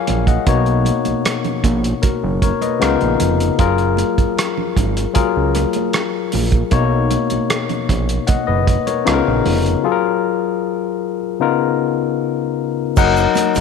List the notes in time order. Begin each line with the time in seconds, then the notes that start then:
Already playing: F#3 F4 G#4 A#4 C#5 F5 G#5
0.07 A#1, closed hi-hat, muted conga, high conga, low conga
0.27 D#5 F#5, kick, closed hi-hat
0.47 B1 B2 A#3 D#4 C#5, kick, closed hi-hat
0.66 closed hi-hat
0.85 closed hi-hat, high conga
1.05 A#1, closed hi-hat, high conga
1.25 cross-stick, closed hi-hat, muted conga
1.44 closed hi-hat, low conga
1.64 A#1, kick, closed hi-hat, muted conga, low conga
1.84 closed hi-hat
2.02 F#1 F#4 A#4, kick, closed hi-hat, muted conga, high conga
2.23 F#1
2.42 A#4 C#5, kick, closed hi-hat, high conga
2.62 B4 D#5, closed hi-hat, high conga
2.79 C#2 C#3 B3 D#4 F4 A#4, cross-stick, closed hi-hat
3.01 A#1, closed hi-hat
3.20 F1, closed hi-hat, muted conga, high conga, low conga
3.40 closed hi-hat
3.58 F#1 F#3 F4 G#4 A#4, kick, closed hi-hat
3.78 closed hi-hat
3.97 closed hi-hat, high conga
4.18 G#1, kick, closed hi-hat, high conga
4.37 cross-stick, closed hi-hat, muted conga
4.58 low conga
4.77 G#1, kick, closed hi-hat, low conga
4.97 closed hi-hat
5.13 C#2 F#3 F4 G#4 A#4, kick, closed hi-hat
5.17 high conga
5.37 C#2
5.55 cross-stick, closed hi-hat, muted conga, high conga
5.73 closed hi-hat, high conga
5.93 cross-stick, closed hi-hat, muted conga
6.32 A#1, open hi-hat, muted conga, high conga, low conga
6.52 kick, closed hi-hat
6.71 B1 B2 A#3 D#4 C#5, kick, closed hi-hat
7.11 closed hi-hat, muted conga, high conga
7.30 A#1, closed hi-hat, high conga
7.50 cross-stick, closed hi-hat
7.69 closed hi-hat, low conga
7.89 A#1, kick, closed hi-hat, muted conga, low conga
8.09 closed hi-hat
8.27 F#1 D#5 F#5, kick, closed hi-hat, high conga
8.47 F#1 B4 D#5
8.67 kick, closed hi-hat, high conga
8.87 A#4 C#5, closed hi-hat, high conga
9.05 C#2 C#3 B3 D#4 F4 A4, cross-stick, closed hi-hat, muted conga
9.13 A#4
9.28 A#1
9.46 F1, open hi-hat, muted conga, high conga, low conga
9.66 closed hi-hat
9.83 F#3 F4 G#4 A4
9.92 A#4
11.40 C#3 B3 D#4 F4 A#4
12.96 F#1 F#3 D#4 A#4 F#5, kick, crash, muted conga, shaker
13.17 shaker
13.35 closed hi-hat, muted conga, high conga, shaker
13.55 F1, closed hi-hat, high conga, shaker